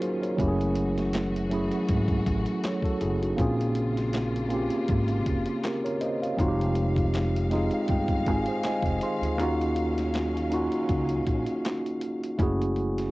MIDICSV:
0, 0, Header, 1, 6, 480
1, 0, Start_track
1, 0, Tempo, 750000
1, 247, Time_signature, 4, 2, 24, 8
1, 8390, End_track
2, 0, Start_track
2, 0, Title_t, "Tine electric piano"
2, 0, Program_c, 0, 4
2, 0, Control_c, 0, 64, 127
2, 0, Note_on_c, 0, 54, 85
2, 0, Note_on_c, 0, 58, 80
2, 0, Note_on_c, 0, 61, 86
2, 0, Note_on_c, 0, 63, 50
2, 0, Note_on_c, 0, 65, 57
2, 0, Note_on_c, 0, 66, 58
2, 0, Note_on_c, 0, 68, 70
2, 0, Note_on_c, 0, 70, 68
2, 7, Note_on_c, 0, 72, 66
2, 11, Note_off_c, 0, 68, 0
2, 11, Note_on_c, 0, 68, 57
2, 132, Note_off_c, 0, 72, 0
2, 135, Note_off_c, 0, 68, 0
2, 142, Note_on_c, 0, 73, 52
2, 146, Note_off_c, 0, 70, 0
2, 146, Note_on_c, 0, 70, 47
2, 234, Note_off_c, 0, 54, 0
2, 234, Note_on_c, 0, 54, 116
2, 243, Note_on_c, 0, 57, 100
2, 251, Note_off_c, 0, 61, 0
2, 251, Note_on_c, 0, 61, 102
2, 255, Control_c, 0, 64, 0
2, 257, Note_off_c, 0, 63, 0
2, 259, Note_off_c, 0, 58, 0
2, 259, Note_off_c, 0, 65, 0
2, 259, Note_on_c, 0, 64, 100
2, 260, Note_off_c, 0, 66, 0
2, 267, Note_on_c, 0, 67, 95
2, 303, Note_off_c, 0, 67, 0
2, 307, Note_on_c, 0, 68, 127
2, 368, Note_off_c, 0, 73, 0
2, 368, Control_c, 0, 64, 127
2, 370, Note_off_c, 0, 70, 0
2, 802, Note_off_c, 0, 54, 0
2, 806, Note_off_c, 0, 57, 0
2, 810, Note_off_c, 0, 61, 0
2, 814, Note_off_c, 0, 64, 0
2, 838, Note_off_c, 0, 68, 0
2, 955, Note_on_c, 0, 54, 89
2, 965, Note_on_c, 0, 57, 81
2, 972, Note_on_c, 0, 61, 86
2, 979, Note_on_c, 0, 64, 85
2, 987, Note_on_c, 0, 68, 100
2, 1691, Note_on_c, 0, 73, 64
2, 1693, Note_off_c, 0, 64, 0
2, 1694, Note_on_c, 0, 69, 52
2, 1697, Note_off_c, 0, 68, 0
2, 1701, Note_off_c, 0, 54, 0
2, 1706, Note_off_c, 0, 57, 0
2, 1710, Note_off_c, 0, 61, 0
2, 1812, Note_off_c, 0, 69, 0
2, 1815, Note_off_c, 0, 73, 0
2, 1820, Note_on_c, 0, 69, 68
2, 1825, Note_on_c, 0, 66, 54
2, 1922, Note_off_c, 0, 69, 0
2, 1925, Note_off_c, 0, 66, 0
2, 1927, Note_on_c, 0, 68, 71
2, 1929, Note_on_c, 0, 64, 58
2, 2052, Note_off_c, 0, 68, 0
2, 2053, Note_off_c, 0, 64, 0
2, 2060, Note_on_c, 0, 66, 56
2, 2061, Note_on_c, 0, 63, 49
2, 2152, Note_on_c, 0, 58, 111
2, 2160, Note_on_c, 0, 60, 107
2, 2168, Note_on_c, 0, 61, 98
2, 2175, Control_c, 0, 64, 0
2, 2175, Note_on_c, 0, 65, 105
2, 2185, Note_on_c, 0, 68, 118
2, 2287, Note_off_c, 0, 66, 0
2, 2288, Note_off_c, 0, 63, 0
2, 2290, Control_c, 0, 64, 127
2, 2721, Note_off_c, 0, 58, 0
2, 2725, Note_off_c, 0, 60, 0
2, 2729, Note_off_c, 0, 61, 0
2, 2732, Note_off_c, 0, 65, 0
2, 2737, Note_off_c, 0, 68, 0
2, 2870, Note_on_c, 0, 58, 93
2, 2880, Note_on_c, 0, 60, 82
2, 2887, Note_on_c, 0, 61, 85
2, 2895, Note_on_c, 0, 65, 81
2, 2904, Note_on_c, 0, 67, 100
2, 3604, Note_off_c, 0, 67, 0
2, 3608, Note_on_c, 0, 70, 63
2, 3612, Note_on_c, 0, 67, 52
2, 3619, Note_off_c, 0, 58, 0
2, 3624, Note_off_c, 0, 60, 0
2, 3627, Note_off_c, 0, 61, 0
2, 3631, Note_off_c, 0, 65, 0
2, 3733, Note_off_c, 0, 70, 0
2, 3735, Note_off_c, 0, 67, 0
2, 3739, Note_on_c, 0, 73, 63
2, 3744, Note_on_c, 0, 70, 58
2, 3842, Note_off_c, 0, 73, 0
2, 3844, Note_off_c, 0, 70, 0
2, 3846, Note_on_c, 0, 75, 71
2, 3851, Note_on_c, 0, 72, 64
2, 3972, Note_off_c, 0, 75, 0
2, 3974, Note_off_c, 0, 72, 0
2, 3982, Note_on_c, 0, 77, 58
2, 3988, Note_on_c, 0, 73, 47
2, 4076, Note_on_c, 0, 56, 109
2, 4080, Note_on_c, 0, 60, 102
2, 4090, Note_on_c, 0, 63, 106
2, 4096, Control_c, 0, 64, 0
2, 4100, Note_on_c, 0, 65, 106
2, 4108, Note_on_c, 0, 66, 96
2, 4143, Note_off_c, 0, 66, 0
2, 4148, Note_on_c, 0, 67, 117
2, 4204, Control_c, 0, 64, 127
2, 4209, Note_off_c, 0, 77, 0
2, 4212, Note_off_c, 0, 73, 0
2, 4643, Note_off_c, 0, 56, 0
2, 4645, Note_off_c, 0, 60, 0
2, 4649, Note_off_c, 0, 63, 0
2, 4655, Note_off_c, 0, 65, 0
2, 4679, Note_off_c, 0, 67, 0
2, 4797, Note_on_c, 0, 56, 91
2, 4806, Note_on_c, 0, 60, 82
2, 4813, Note_on_c, 0, 75, 72
2, 4814, Note_on_c, 0, 63, 85
2, 4820, Note_on_c, 0, 65, 87
2, 4829, Note_on_c, 0, 68, 97
2, 4933, Note_off_c, 0, 75, 0
2, 4950, Note_on_c, 0, 77, 66
2, 5045, Note_off_c, 0, 77, 0
2, 5055, Note_on_c, 0, 79, 76
2, 5275, Note_off_c, 0, 79, 0
2, 5288, Note_off_c, 0, 68, 0
2, 5294, Note_off_c, 0, 65, 0
2, 5296, Note_on_c, 0, 68, 64
2, 5298, Note_on_c, 0, 80, 69
2, 5302, Note_on_c, 0, 65, 54
2, 5417, Note_off_c, 0, 68, 0
2, 5420, Note_off_c, 0, 65, 0
2, 5429, Note_on_c, 0, 72, 65
2, 5431, Note_on_c, 0, 68, 55
2, 5516, Note_off_c, 0, 80, 0
2, 5527, Note_off_c, 0, 72, 0
2, 5528, Note_off_c, 0, 68, 0
2, 5541, Note_on_c, 0, 75, 67
2, 5542, Note_off_c, 0, 56, 0
2, 5542, Note_on_c, 0, 80, 73
2, 5544, Note_on_c, 0, 72, 58
2, 5547, Note_off_c, 0, 60, 0
2, 5551, Note_off_c, 0, 63, 0
2, 5758, Note_off_c, 0, 80, 0
2, 5762, Note_off_c, 0, 75, 0
2, 5764, Note_off_c, 0, 72, 0
2, 5776, Note_on_c, 0, 72, 62
2, 5778, Note_on_c, 0, 84, 67
2, 5781, Note_on_c, 0, 68, 56
2, 5897, Note_off_c, 0, 72, 0
2, 5900, Note_off_c, 0, 68, 0
2, 5911, Note_on_c, 0, 68, 53
2, 5914, Note_on_c, 0, 65, 46
2, 5996, Note_off_c, 0, 84, 0
2, 6002, Note_on_c, 0, 58, 108
2, 6008, Note_on_c, 0, 61, 102
2, 6016, Control_c, 0, 64, 0
2, 6017, Note_off_c, 0, 65, 0
2, 6017, Note_on_c, 0, 63, 95
2, 6025, Note_on_c, 0, 65, 98
2, 6033, Note_on_c, 0, 66, 127
2, 6125, Control_c, 0, 64, 127
2, 6133, Note_off_c, 0, 68, 0
2, 6566, Note_off_c, 0, 58, 0
2, 6569, Note_off_c, 0, 61, 0
2, 6573, Note_off_c, 0, 63, 0
2, 6577, Note_off_c, 0, 65, 0
2, 6581, Note_off_c, 0, 66, 0
2, 6718, Note_on_c, 0, 58, 87
2, 6724, Note_on_c, 0, 61, 79
2, 6730, Note_on_c, 0, 63, 82
2, 6741, Note_on_c, 0, 65, 87
2, 6748, Note_on_c, 0, 66, 107
2, 7463, Note_off_c, 0, 58, 0
2, 7466, Note_off_c, 0, 61, 0
2, 7469, Note_off_c, 0, 63, 0
2, 7474, Note_off_c, 0, 65, 0
2, 7478, Note_off_c, 0, 66, 0
2, 7923, Note_on_c, 0, 57, 106
2, 7931, Note_on_c, 0, 61, 107
2, 7935, Control_c, 0, 64, 0
2, 7938, Note_on_c, 0, 64, 101
2, 7948, Note_on_c, 0, 66, 102
2, 7954, Note_on_c, 0, 68, 124
2, 8036, Control_c, 0, 64, 127
2, 8390, Note_off_c, 0, 57, 0
2, 8390, Note_off_c, 0, 61, 0
2, 8390, Note_off_c, 0, 64, 0
2, 8390, Note_off_c, 0, 66, 0
2, 8390, Note_off_c, 0, 68, 0
2, 8390, End_track
3, 0, Start_track
3, 0, Title_t, "String section"
3, 0, Program_c, 1, 48
3, 0, Note_on_c, 1, 51, 74
3, 0, Note_on_c, 1, 54, 71
3, 0, Note_on_c, 1, 61, 67
3, 0, Note_on_c, 1, 65, 78
3, 227, Note_off_c, 1, 65, 0
3, 228, Note_off_c, 1, 51, 0
3, 228, Note_off_c, 1, 54, 0
3, 228, Note_off_c, 1, 61, 0
3, 247, Note_on_c, 1, 52, 79
3, 247, Note_on_c, 1, 66, 86
3, 249, Note_on_c, 1, 57, 69
3, 2148, Note_off_c, 1, 52, 0
3, 2148, Note_off_c, 1, 66, 0
3, 2149, Note_off_c, 1, 57, 0
3, 2165, Note_on_c, 1, 65, 83
3, 2166, Note_on_c, 1, 58, 71
3, 2167, Note_on_c, 1, 49, 79
3, 4066, Note_off_c, 1, 65, 0
3, 4067, Note_off_c, 1, 58, 0
3, 4068, Note_off_c, 1, 49, 0
3, 4080, Note_on_c, 1, 51, 75
3, 4082, Note_on_c, 1, 77, 86
3, 4085, Note_on_c, 1, 56, 70
3, 5987, Note_off_c, 1, 56, 0
3, 6001, Note_on_c, 1, 54, 67
3, 6003, Note_on_c, 1, 61, 65
3, 7898, Note_off_c, 1, 51, 0
3, 7899, Note_off_c, 1, 77, 0
3, 7905, Note_off_c, 1, 54, 0
3, 7906, Note_off_c, 1, 61, 0
3, 8390, End_track
4, 0, Start_track
4, 0, Title_t, "Upright bass"
4, 0, Program_c, 2, 32
4, 251, Note_on_c, 2, 30, 98
4, 1075, Note_off_c, 2, 30, 0
4, 1212, Note_on_c, 2, 32, 96
4, 1403, Note_off_c, 2, 32, 0
4, 1452, Note_on_c, 2, 33, 92
4, 1556, Note_off_c, 2, 33, 0
4, 1931, Note_on_c, 2, 30, 87
4, 2122, Note_off_c, 2, 30, 0
4, 2167, Note_on_c, 2, 34, 108
4, 2993, Note_off_c, 2, 34, 0
4, 3131, Note_on_c, 2, 32, 99
4, 3322, Note_off_c, 2, 32, 0
4, 3371, Note_on_c, 2, 29, 78
4, 3475, Note_off_c, 2, 29, 0
4, 4088, Note_on_c, 2, 29, 105
4, 4914, Note_off_c, 2, 29, 0
4, 5052, Note_on_c, 2, 31, 93
4, 5293, Note_off_c, 2, 31, 0
4, 5293, Note_on_c, 2, 32, 90
4, 5396, Note_off_c, 2, 32, 0
4, 5650, Note_on_c, 2, 29, 87
4, 5740, Note_off_c, 2, 29, 0
4, 5896, Note_on_c, 2, 38, 81
4, 6001, Note_off_c, 2, 38, 0
4, 6001, Note_on_c, 2, 39, 98
4, 6830, Note_off_c, 2, 39, 0
4, 6975, Note_on_c, 2, 37, 92
4, 7164, Note_off_c, 2, 37, 0
4, 7213, Note_on_c, 2, 34, 79
4, 7317, Note_off_c, 2, 34, 0
4, 7931, Note_on_c, 2, 30, 102
4, 8390, Note_off_c, 2, 30, 0
4, 8390, End_track
5, 0, Start_track
5, 0, Title_t, "Muted upright bass strokes"
5, 5529, Note_on_c, 9, 29, 45
5, 5593, Note_off_c, 9, 29, 0
5, 8390, End_track
6, 0, Start_track
6, 0, Title_t, "Drums"
6, 12, Note_on_c, 9, 42, 77
6, 76, Note_off_c, 9, 42, 0
6, 150, Note_on_c, 9, 42, 49
6, 214, Note_off_c, 9, 42, 0
6, 247, Note_on_c, 9, 36, 105
6, 255, Note_on_c, 9, 42, 76
6, 311, Note_off_c, 9, 36, 0
6, 319, Note_off_c, 9, 42, 0
6, 391, Note_on_c, 9, 42, 44
6, 455, Note_off_c, 9, 42, 0
6, 484, Note_on_c, 9, 42, 64
6, 548, Note_off_c, 9, 42, 0
6, 626, Note_on_c, 9, 42, 52
6, 634, Note_on_c, 9, 38, 34
6, 690, Note_off_c, 9, 42, 0
6, 698, Note_off_c, 9, 38, 0
6, 726, Note_on_c, 9, 42, 88
6, 737, Note_on_c, 9, 38, 99
6, 737, Note_on_c, 9, 39, 83
6, 790, Note_off_c, 9, 42, 0
6, 801, Note_off_c, 9, 38, 0
6, 801, Note_off_c, 9, 39, 0
6, 872, Note_on_c, 9, 42, 44
6, 936, Note_off_c, 9, 42, 0
6, 969, Note_on_c, 9, 42, 61
6, 1033, Note_off_c, 9, 42, 0
6, 1098, Note_on_c, 9, 42, 45
6, 1162, Note_off_c, 9, 42, 0
6, 1208, Note_on_c, 9, 42, 76
6, 1210, Note_on_c, 9, 36, 104
6, 1272, Note_off_c, 9, 42, 0
6, 1274, Note_off_c, 9, 36, 0
6, 1332, Note_on_c, 9, 36, 94
6, 1334, Note_on_c, 9, 42, 47
6, 1396, Note_off_c, 9, 36, 0
6, 1398, Note_off_c, 9, 42, 0
6, 1449, Note_on_c, 9, 36, 85
6, 1451, Note_on_c, 9, 42, 67
6, 1513, Note_off_c, 9, 36, 0
6, 1515, Note_off_c, 9, 42, 0
6, 1574, Note_on_c, 9, 42, 53
6, 1638, Note_off_c, 9, 42, 0
6, 1687, Note_on_c, 9, 42, 82
6, 1695, Note_on_c, 9, 38, 110
6, 1695, Note_on_c, 9, 39, 87
6, 1751, Note_off_c, 9, 42, 0
6, 1759, Note_off_c, 9, 38, 0
6, 1759, Note_off_c, 9, 39, 0
6, 1808, Note_on_c, 9, 36, 90
6, 1828, Note_on_c, 9, 42, 47
6, 1872, Note_off_c, 9, 36, 0
6, 1892, Note_off_c, 9, 42, 0
6, 1926, Note_on_c, 9, 42, 78
6, 1990, Note_off_c, 9, 42, 0
6, 2066, Note_on_c, 9, 42, 50
6, 2130, Note_off_c, 9, 42, 0
6, 2165, Note_on_c, 9, 36, 122
6, 2173, Note_on_c, 9, 42, 80
6, 2229, Note_off_c, 9, 36, 0
6, 2237, Note_off_c, 9, 42, 0
6, 2309, Note_on_c, 9, 42, 45
6, 2373, Note_off_c, 9, 42, 0
6, 2400, Note_on_c, 9, 42, 67
6, 2464, Note_off_c, 9, 42, 0
6, 2542, Note_on_c, 9, 42, 54
6, 2550, Note_on_c, 9, 38, 35
6, 2606, Note_off_c, 9, 42, 0
6, 2614, Note_off_c, 9, 38, 0
6, 2644, Note_on_c, 9, 42, 77
6, 2655, Note_on_c, 9, 38, 99
6, 2655, Note_on_c, 9, 39, 80
6, 2708, Note_off_c, 9, 42, 0
6, 2719, Note_off_c, 9, 38, 0
6, 2719, Note_off_c, 9, 39, 0
6, 2790, Note_on_c, 9, 42, 46
6, 2854, Note_off_c, 9, 42, 0
6, 2882, Note_on_c, 9, 42, 60
6, 2946, Note_off_c, 9, 42, 0
6, 3009, Note_on_c, 9, 42, 46
6, 3073, Note_off_c, 9, 42, 0
6, 3123, Note_on_c, 9, 42, 82
6, 3128, Note_on_c, 9, 36, 103
6, 3187, Note_off_c, 9, 42, 0
6, 3192, Note_off_c, 9, 36, 0
6, 3250, Note_on_c, 9, 42, 46
6, 3314, Note_off_c, 9, 42, 0
6, 3367, Note_on_c, 9, 36, 88
6, 3367, Note_on_c, 9, 42, 63
6, 3431, Note_off_c, 9, 36, 0
6, 3431, Note_off_c, 9, 42, 0
6, 3492, Note_on_c, 9, 42, 51
6, 3556, Note_off_c, 9, 42, 0
6, 3606, Note_on_c, 9, 42, 80
6, 3613, Note_on_c, 9, 38, 106
6, 3614, Note_on_c, 9, 39, 91
6, 3670, Note_off_c, 9, 42, 0
6, 3677, Note_off_c, 9, 38, 0
6, 3678, Note_off_c, 9, 39, 0
6, 3749, Note_on_c, 9, 42, 46
6, 3813, Note_off_c, 9, 42, 0
6, 3846, Note_on_c, 9, 42, 79
6, 3910, Note_off_c, 9, 42, 0
6, 3989, Note_on_c, 9, 42, 52
6, 4053, Note_off_c, 9, 42, 0
6, 4086, Note_on_c, 9, 36, 118
6, 4094, Note_on_c, 9, 42, 73
6, 4150, Note_off_c, 9, 36, 0
6, 4158, Note_off_c, 9, 42, 0
6, 4231, Note_on_c, 9, 42, 46
6, 4295, Note_off_c, 9, 42, 0
6, 4322, Note_on_c, 9, 42, 67
6, 4386, Note_off_c, 9, 42, 0
6, 4456, Note_on_c, 9, 36, 88
6, 4465, Note_on_c, 9, 42, 50
6, 4520, Note_off_c, 9, 36, 0
6, 4529, Note_off_c, 9, 42, 0
6, 4567, Note_on_c, 9, 42, 83
6, 4578, Note_on_c, 9, 38, 99
6, 4579, Note_on_c, 9, 39, 84
6, 4631, Note_off_c, 9, 42, 0
6, 4642, Note_off_c, 9, 38, 0
6, 4643, Note_off_c, 9, 39, 0
6, 4712, Note_on_c, 9, 42, 45
6, 4776, Note_off_c, 9, 42, 0
6, 4807, Note_on_c, 9, 42, 62
6, 4820, Note_on_c, 9, 38, 35
6, 4871, Note_off_c, 9, 42, 0
6, 4884, Note_off_c, 9, 38, 0
6, 4933, Note_on_c, 9, 42, 46
6, 4997, Note_off_c, 9, 42, 0
6, 5042, Note_on_c, 9, 42, 83
6, 5049, Note_on_c, 9, 36, 105
6, 5106, Note_off_c, 9, 42, 0
6, 5113, Note_off_c, 9, 36, 0
6, 5171, Note_on_c, 9, 36, 99
6, 5175, Note_on_c, 9, 42, 49
6, 5235, Note_off_c, 9, 36, 0
6, 5239, Note_off_c, 9, 42, 0
6, 5288, Note_on_c, 9, 42, 66
6, 5289, Note_on_c, 9, 36, 86
6, 5352, Note_off_c, 9, 42, 0
6, 5353, Note_off_c, 9, 36, 0
6, 5413, Note_on_c, 9, 42, 48
6, 5477, Note_off_c, 9, 42, 0
6, 5526, Note_on_c, 9, 42, 89
6, 5534, Note_on_c, 9, 38, 109
6, 5534, Note_on_c, 9, 39, 86
6, 5590, Note_off_c, 9, 42, 0
6, 5598, Note_off_c, 9, 38, 0
6, 5598, Note_off_c, 9, 39, 0
6, 5648, Note_on_c, 9, 36, 96
6, 5669, Note_on_c, 9, 42, 48
6, 5712, Note_off_c, 9, 36, 0
6, 5733, Note_off_c, 9, 42, 0
6, 5768, Note_on_c, 9, 42, 78
6, 5832, Note_off_c, 9, 42, 0
6, 5909, Note_on_c, 9, 42, 50
6, 5973, Note_off_c, 9, 42, 0
6, 6013, Note_on_c, 9, 42, 74
6, 6077, Note_off_c, 9, 42, 0
6, 6153, Note_on_c, 9, 42, 42
6, 6217, Note_off_c, 9, 42, 0
6, 6247, Note_on_c, 9, 42, 69
6, 6311, Note_off_c, 9, 42, 0
6, 6387, Note_on_c, 9, 42, 49
6, 6395, Note_on_c, 9, 38, 34
6, 6451, Note_off_c, 9, 42, 0
6, 6459, Note_off_c, 9, 38, 0
6, 6489, Note_on_c, 9, 42, 77
6, 6500, Note_on_c, 9, 38, 95
6, 6501, Note_on_c, 9, 39, 76
6, 6553, Note_off_c, 9, 42, 0
6, 6564, Note_off_c, 9, 38, 0
6, 6565, Note_off_c, 9, 39, 0
6, 6637, Note_on_c, 9, 42, 46
6, 6701, Note_off_c, 9, 42, 0
6, 6732, Note_on_c, 9, 42, 59
6, 6796, Note_off_c, 9, 42, 0
6, 6861, Note_on_c, 9, 42, 43
6, 6925, Note_off_c, 9, 42, 0
6, 6970, Note_on_c, 9, 42, 79
6, 6972, Note_on_c, 9, 36, 101
6, 7034, Note_off_c, 9, 42, 0
6, 7036, Note_off_c, 9, 36, 0
6, 7098, Note_on_c, 9, 42, 44
6, 7162, Note_off_c, 9, 42, 0
6, 7212, Note_on_c, 9, 36, 92
6, 7214, Note_on_c, 9, 42, 64
6, 7276, Note_off_c, 9, 36, 0
6, 7278, Note_off_c, 9, 42, 0
6, 7338, Note_on_c, 9, 42, 53
6, 7402, Note_off_c, 9, 42, 0
6, 7456, Note_on_c, 9, 42, 82
6, 7463, Note_on_c, 9, 38, 105
6, 7463, Note_on_c, 9, 39, 90
6, 7520, Note_off_c, 9, 42, 0
6, 7527, Note_off_c, 9, 38, 0
6, 7527, Note_off_c, 9, 39, 0
6, 7591, Note_on_c, 9, 42, 45
6, 7655, Note_off_c, 9, 42, 0
6, 7689, Note_on_c, 9, 42, 78
6, 7753, Note_off_c, 9, 42, 0
6, 7831, Note_on_c, 9, 42, 50
6, 7895, Note_off_c, 9, 42, 0
6, 7928, Note_on_c, 9, 36, 115
6, 7934, Note_on_c, 9, 42, 75
6, 7992, Note_off_c, 9, 36, 0
6, 7998, Note_off_c, 9, 42, 0
6, 8074, Note_on_c, 9, 42, 46
6, 8138, Note_off_c, 9, 42, 0
6, 8167, Note_on_c, 9, 42, 66
6, 8231, Note_off_c, 9, 42, 0
6, 8307, Note_on_c, 9, 42, 56
6, 8315, Note_on_c, 9, 38, 32
6, 8371, Note_off_c, 9, 42, 0
6, 8379, Note_off_c, 9, 38, 0
6, 8390, End_track
0, 0, End_of_file